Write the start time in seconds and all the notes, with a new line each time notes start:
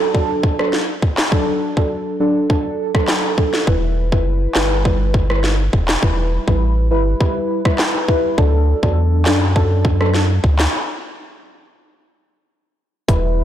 Already playing: F#3 D4 A4
0.14 F#3 D4 A4, kick
0.43 kick
0.59 F#3 D4 A4, cross-stick
0.73 snare
1.02 kick
1.17 snare, clap
1.31 F#3 D4 A4, kick
1.77 F#3 D4 A4, kick
2.20 F#3 D4 A4
2.49 F#3 D4 A4, kick
2.94 F#3 D4 A4, kick, cross-stick
3.08 snare, clap
3.38 F#3 D4 A4, kick
3.54 snare
3.67 E1 G3 E4 B4, kick
4.12 F#1 G3 E4 B4, kick
4.55 G1 G3 E4 B4, snare, clap
4.85 G3 E4 B4, kick
5.14 kick
5.30 G3 E4 B4, cross-stick
5.44 snare
5.73 E1, kick
5.88 snare, clap
6.02 E1 G3 E4 B4, kick
6.47 A1 G3 E4 B4, kick
6.90 G1 G3 E4 B4
7.20 G3 E4 B4, kick
7.65 G3 E4 B4, kick, cross-stick
7.78 snare, clap
8.08 G3 E4 B4, kick
8.38 D2 F#3 D4 A4, kick
8.83 E2 F#3 D4 A4, kick
9.25 F#2 F#3 D4 A4, snare, clap
9.55 F#3 D4 A4, kick
9.85 kick
10.00 F#3 D4 A4, cross-stick
10.14 snare
10.44 D2, kick
10.59 snare, clap
13.08 E1 G3 E4 B4, kick, closed hi-hat